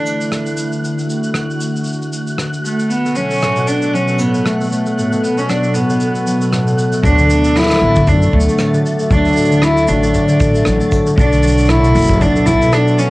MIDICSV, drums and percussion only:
0, 0, Header, 1, 2, 480
1, 0, Start_track
1, 0, Tempo, 517241
1, 776, Time_signature, 4, 2, 24, 8
1, 12157, End_track
2, 0, Start_track
2, 0, Title_t, "Drums"
2, 59, Note_on_c, 9, 82, 78
2, 152, Note_off_c, 9, 82, 0
2, 195, Note_on_c, 9, 82, 38
2, 288, Note_off_c, 9, 82, 0
2, 295, Note_on_c, 9, 37, 77
2, 296, Note_on_c, 9, 82, 44
2, 388, Note_off_c, 9, 37, 0
2, 389, Note_off_c, 9, 82, 0
2, 428, Note_on_c, 9, 82, 38
2, 521, Note_off_c, 9, 82, 0
2, 531, Note_on_c, 9, 82, 79
2, 624, Note_off_c, 9, 82, 0
2, 672, Note_on_c, 9, 82, 34
2, 765, Note_off_c, 9, 82, 0
2, 784, Note_on_c, 9, 82, 49
2, 876, Note_off_c, 9, 82, 0
2, 915, Note_on_c, 9, 82, 34
2, 1008, Note_off_c, 9, 82, 0
2, 1018, Note_on_c, 9, 82, 74
2, 1111, Note_off_c, 9, 82, 0
2, 1147, Note_on_c, 9, 82, 41
2, 1239, Note_off_c, 9, 82, 0
2, 1245, Note_on_c, 9, 37, 86
2, 1254, Note_on_c, 9, 82, 47
2, 1337, Note_off_c, 9, 37, 0
2, 1347, Note_off_c, 9, 82, 0
2, 1397, Note_on_c, 9, 82, 30
2, 1490, Note_off_c, 9, 82, 0
2, 1491, Note_on_c, 9, 82, 70
2, 1584, Note_off_c, 9, 82, 0
2, 1636, Note_on_c, 9, 82, 39
2, 1704, Note_off_c, 9, 82, 0
2, 1704, Note_on_c, 9, 82, 34
2, 1733, Note_off_c, 9, 82, 0
2, 1733, Note_on_c, 9, 82, 52
2, 1787, Note_off_c, 9, 82, 0
2, 1787, Note_on_c, 9, 82, 28
2, 1874, Note_off_c, 9, 82, 0
2, 1874, Note_on_c, 9, 82, 33
2, 1967, Note_off_c, 9, 82, 0
2, 1975, Note_on_c, 9, 82, 70
2, 2067, Note_off_c, 9, 82, 0
2, 2106, Note_on_c, 9, 82, 39
2, 2199, Note_off_c, 9, 82, 0
2, 2211, Note_on_c, 9, 37, 83
2, 2218, Note_on_c, 9, 82, 49
2, 2304, Note_off_c, 9, 37, 0
2, 2311, Note_off_c, 9, 82, 0
2, 2351, Note_on_c, 9, 82, 39
2, 2444, Note_off_c, 9, 82, 0
2, 2461, Note_on_c, 9, 82, 66
2, 2554, Note_off_c, 9, 82, 0
2, 2592, Note_on_c, 9, 82, 42
2, 2685, Note_off_c, 9, 82, 0
2, 2697, Note_on_c, 9, 82, 52
2, 2790, Note_off_c, 9, 82, 0
2, 2837, Note_on_c, 9, 82, 30
2, 2929, Note_off_c, 9, 82, 0
2, 2929, Note_on_c, 9, 82, 73
2, 3022, Note_off_c, 9, 82, 0
2, 3068, Note_on_c, 9, 82, 36
2, 3090, Note_off_c, 9, 82, 0
2, 3090, Note_on_c, 9, 82, 33
2, 3112, Note_off_c, 9, 82, 0
2, 3112, Note_on_c, 9, 82, 24
2, 3132, Note_off_c, 9, 82, 0
2, 3132, Note_on_c, 9, 82, 21
2, 3154, Note_off_c, 9, 82, 0
2, 3154, Note_on_c, 9, 82, 18
2, 3177, Note_off_c, 9, 82, 0
2, 3177, Note_on_c, 9, 82, 49
2, 3181, Note_on_c, 9, 37, 91
2, 3270, Note_off_c, 9, 82, 0
2, 3274, Note_off_c, 9, 37, 0
2, 3307, Note_on_c, 9, 82, 33
2, 3399, Note_off_c, 9, 82, 0
2, 3413, Note_on_c, 9, 82, 82
2, 3505, Note_off_c, 9, 82, 0
2, 3547, Note_on_c, 9, 82, 47
2, 3640, Note_off_c, 9, 82, 0
2, 3668, Note_on_c, 9, 82, 52
2, 3761, Note_off_c, 9, 82, 0
2, 3788, Note_on_c, 9, 82, 33
2, 3881, Note_off_c, 9, 82, 0
2, 3890, Note_on_c, 9, 82, 77
2, 3983, Note_off_c, 9, 82, 0
2, 4031, Note_on_c, 9, 82, 43
2, 4124, Note_off_c, 9, 82, 0
2, 4136, Note_on_c, 9, 37, 91
2, 4144, Note_on_c, 9, 82, 55
2, 4229, Note_off_c, 9, 37, 0
2, 4237, Note_off_c, 9, 82, 0
2, 4276, Note_on_c, 9, 82, 35
2, 4301, Note_off_c, 9, 82, 0
2, 4301, Note_on_c, 9, 82, 29
2, 4328, Note_off_c, 9, 82, 0
2, 4328, Note_on_c, 9, 82, 23
2, 4356, Note_off_c, 9, 82, 0
2, 4356, Note_on_c, 9, 82, 19
2, 4382, Note_off_c, 9, 82, 0
2, 4382, Note_on_c, 9, 82, 71
2, 4475, Note_off_c, 9, 82, 0
2, 4510, Note_on_c, 9, 82, 43
2, 4603, Note_off_c, 9, 82, 0
2, 4630, Note_on_c, 9, 82, 53
2, 4723, Note_off_c, 9, 82, 0
2, 4755, Note_on_c, 9, 82, 38
2, 4847, Note_off_c, 9, 82, 0
2, 4866, Note_on_c, 9, 82, 72
2, 4958, Note_off_c, 9, 82, 0
2, 4992, Note_on_c, 9, 82, 42
2, 5085, Note_off_c, 9, 82, 0
2, 5096, Note_on_c, 9, 82, 50
2, 5100, Note_on_c, 9, 37, 72
2, 5189, Note_off_c, 9, 82, 0
2, 5193, Note_off_c, 9, 37, 0
2, 5230, Note_on_c, 9, 82, 32
2, 5322, Note_off_c, 9, 82, 0
2, 5332, Note_on_c, 9, 82, 72
2, 5424, Note_off_c, 9, 82, 0
2, 5473, Note_on_c, 9, 82, 47
2, 5566, Note_off_c, 9, 82, 0
2, 5570, Note_on_c, 9, 82, 50
2, 5662, Note_off_c, 9, 82, 0
2, 5706, Note_on_c, 9, 82, 32
2, 5799, Note_off_c, 9, 82, 0
2, 5818, Note_on_c, 9, 82, 79
2, 5911, Note_off_c, 9, 82, 0
2, 5951, Note_on_c, 9, 82, 46
2, 6044, Note_off_c, 9, 82, 0
2, 6055, Note_on_c, 9, 37, 73
2, 6057, Note_on_c, 9, 82, 52
2, 6148, Note_off_c, 9, 37, 0
2, 6149, Note_off_c, 9, 82, 0
2, 6191, Note_on_c, 9, 82, 36
2, 6283, Note_off_c, 9, 82, 0
2, 6294, Note_on_c, 9, 82, 73
2, 6387, Note_off_c, 9, 82, 0
2, 6425, Note_on_c, 9, 82, 39
2, 6518, Note_off_c, 9, 82, 0
2, 6527, Note_on_c, 9, 36, 113
2, 6540, Note_on_c, 9, 82, 64
2, 6620, Note_off_c, 9, 36, 0
2, 6633, Note_off_c, 9, 82, 0
2, 6666, Note_on_c, 9, 82, 41
2, 6758, Note_off_c, 9, 82, 0
2, 6773, Note_on_c, 9, 82, 92
2, 6866, Note_off_c, 9, 82, 0
2, 6906, Note_on_c, 9, 82, 52
2, 6998, Note_off_c, 9, 82, 0
2, 7012, Note_on_c, 9, 37, 45
2, 7016, Note_on_c, 9, 82, 50
2, 7048, Note_off_c, 9, 37, 0
2, 7048, Note_on_c, 9, 37, 49
2, 7080, Note_off_c, 9, 37, 0
2, 7080, Note_on_c, 9, 37, 54
2, 7109, Note_off_c, 9, 82, 0
2, 7113, Note_off_c, 9, 37, 0
2, 7113, Note_on_c, 9, 37, 58
2, 7147, Note_off_c, 9, 37, 0
2, 7147, Note_on_c, 9, 37, 72
2, 7150, Note_on_c, 9, 82, 38
2, 7173, Note_off_c, 9, 37, 0
2, 7173, Note_on_c, 9, 37, 74
2, 7198, Note_off_c, 9, 37, 0
2, 7198, Note_on_c, 9, 37, 79
2, 7226, Note_off_c, 9, 37, 0
2, 7226, Note_on_c, 9, 37, 80
2, 7243, Note_off_c, 9, 82, 0
2, 7319, Note_off_c, 9, 37, 0
2, 7384, Note_on_c, 9, 82, 48
2, 7393, Note_on_c, 9, 36, 100
2, 7477, Note_off_c, 9, 82, 0
2, 7486, Note_off_c, 9, 36, 0
2, 7492, Note_on_c, 9, 82, 55
2, 7493, Note_on_c, 9, 36, 106
2, 7585, Note_off_c, 9, 82, 0
2, 7586, Note_off_c, 9, 36, 0
2, 7630, Note_on_c, 9, 82, 38
2, 7723, Note_off_c, 9, 82, 0
2, 7733, Note_on_c, 9, 36, 58
2, 7798, Note_on_c, 9, 82, 83
2, 7826, Note_off_c, 9, 36, 0
2, 7877, Note_off_c, 9, 82, 0
2, 7877, Note_on_c, 9, 82, 49
2, 7967, Note_off_c, 9, 82, 0
2, 7967, Note_on_c, 9, 82, 60
2, 7968, Note_on_c, 9, 37, 88
2, 8060, Note_off_c, 9, 37, 0
2, 8060, Note_off_c, 9, 82, 0
2, 8109, Note_on_c, 9, 82, 40
2, 8202, Note_off_c, 9, 82, 0
2, 8219, Note_on_c, 9, 82, 80
2, 8312, Note_off_c, 9, 82, 0
2, 8343, Note_on_c, 9, 82, 47
2, 8436, Note_off_c, 9, 82, 0
2, 8450, Note_on_c, 9, 36, 127
2, 8452, Note_on_c, 9, 82, 60
2, 8543, Note_off_c, 9, 36, 0
2, 8545, Note_off_c, 9, 82, 0
2, 8582, Note_on_c, 9, 82, 19
2, 8607, Note_off_c, 9, 82, 0
2, 8607, Note_on_c, 9, 82, 24
2, 8652, Note_off_c, 9, 82, 0
2, 8652, Note_on_c, 9, 82, 27
2, 8687, Note_off_c, 9, 82, 0
2, 8687, Note_on_c, 9, 82, 32
2, 8696, Note_off_c, 9, 82, 0
2, 8696, Note_on_c, 9, 82, 82
2, 8735, Note_off_c, 9, 82, 0
2, 8735, Note_on_c, 9, 82, 37
2, 8770, Note_off_c, 9, 82, 0
2, 8770, Note_on_c, 9, 82, 41
2, 8832, Note_off_c, 9, 82, 0
2, 8832, Note_on_c, 9, 82, 54
2, 8925, Note_off_c, 9, 82, 0
2, 8926, Note_on_c, 9, 37, 96
2, 8937, Note_on_c, 9, 82, 54
2, 9019, Note_off_c, 9, 37, 0
2, 9029, Note_off_c, 9, 82, 0
2, 9071, Note_on_c, 9, 82, 40
2, 9163, Note_off_c, 9, 82, 0
2, 9167, Note_on_c, 9, 82, 89
2, 9259, Note_off_c, 9, 82, 0
2, 9311, Note_on_c, 9, 82, 51
2, 9404, Note_off_c, 9, 82, 0
2, 9412, Note_on_c, 9, 82, 68
2, 9418, Note_on_c, 9, 36, 53
2, 9504, Note_off_c, 9, 82, 0
2, 9511, Note_off_c, 9, 36, 0
2, 9545, Note_on_c, 9, 82, 42
2, 9637, Note_off_c, 9, 82, 0
2, 9654, Note_on_c, 9, 36, 119
2, 9654, Note_on_c, 9, 82, 87
2, 9746, Note_off_c, 9, 36, 0
2, 9747, Note_off_c, 9, 82, 0
2, 9789, Note_on_c, 9, 82, 57
2, 9882, Note_off_c, 9, 82, 0
2, 9884, Note_on_c, 9, 37, 96
2, 9901, Note_on_c, 9, 82, 61
2, 9977, Note_off_c, 9, 37, 0
2, 9994, Note_off_c, 9, 82, 0
2, 10027, Note_on_c, 9, 82, 45
2, 10120, Note_off_c, 9, 82, 0
2, 10133, Note_on_c, 9, 82, 89
2, 10134, Note_on_c, 9, 36, 101
2, 10225, Note_off_c, 9, 82, 0
2, 10227, Note_off_c, 9, 36, 0
2, 10269, Note_on_c, 9, 82, 46
2, 10362, Note_off_c, 9, 82, 0
2, 10372, Note_on_c, 9, 36, 122
2, 10381, Note_on_c, 9, 82, 52
2, 10465, Note_off_c, 9, 36, 0
2, 10474, Note_off_c, 9, 82, 0
2, 10508, Note_on_c, 9, 82, 39
2, 10601, Note_off_c, 9, 82, 0
2, 10605, Note_on_c, 9, 82, 80
2, 10650, Note_off_c, 9, 82, 0
2, 10650, Note_on_c, 9, 82, 70
2, 10685, Note_off_c, 9, 82, 0
2, 10685, Note_on_c, 9, 82, 54
2, 10738, Note_off_c, 9, 82, 0
2, 10738, Note_on_c, 9, 82, 46
2, 10750, Note_off_c, 9, 82, 0
2, 10750, Note_on_c, 9, 82, 56
2, 10764, Note_off_c, 9, 82, 0
2, 10764, Note_on_c, 9, 82, 37
2, 10810, Note_off_c, 9, 82, 0
2, 10810, Note_on_c, 9, 82, 30
2, 10850, Note_on_c, 9, 37, 104
2, 10852, Note_off_c, 9, 82, 0
2, 10852, Note_on_c, 9, 82, 59
2, 10943, Note_off_c, 9, 37, 0
2, 10945, Note_off_c, 9, 82, 0
2, 10989, Note_on_c, 9, 82, 45
2, 11082, Note_off_c, 9, 82, 0
2, 11093, Note_on_c, 9, 82, 40
2, 11121, Note_off_c, 9, 82, 0
2, 11121, Note_on_c, 9, 82, 46
2, 11150, Note_off_c, 9, 82, 0
2, 11150, Note_on_c, 9, 82, 54
2, 11176, Note_off_c, 9, 82, 0
2, 11176, Note_on_c, 9, 82, 67
2, 11201, Note_off_c, 9, 82, 0
2, 11201, Note_on_c, 9, 82, 73
2, 11226, Note_on_c, 9, 36, 96
2, 11229, Note_off_c, 9, 82, 0
2, 11229, Note_on_c, 9, 82, 52
2, 11319, Note_off_c, 9, 36, 0
2, 11322, Note_off_c, 9, 82, 0
2, 11336, Note_on_c, 9, 36, 99
2, 11336, Note_on_c, 9, 82, 59
2, 11429, Note_off_c, 9, 36, 0
2, 11429, Note_off_c, 9, 82, 0
2, 11473, Note_on_c, 9, 82, 40
2, 11566, Note_off_c, 9, 82, 0
2, 11571, Note_on_c, 9, 82, 97
2, 11578, Note_on_c, 9, 36, 57
2, 11663, Note_off_c, 9, 82, 0
2, 11671, Note_off_c, 9, 36, 0
2, 11710, Note_on_c, 9, 82, 49
2, 11803, Note_off_c, 9, 82, 0
2, 11811, Note_on_c, 9, 82, 57
2, 11813, Note_on_c, 9, 37, 103
2, 11904, Note_off_c, 9, 82, 0
2, 11906, Note_off_c, 9, 37, 0
2, 11947, Note_on_c, 9, 82, 43
2, 12040, Note_off_c, 9, 82, 0
2, 12053, Note_on_c, 9, 82, 83
2, 12146, Note_off_c, 9, 82, 0
2, 12157, End_track
0, 0, End_of_file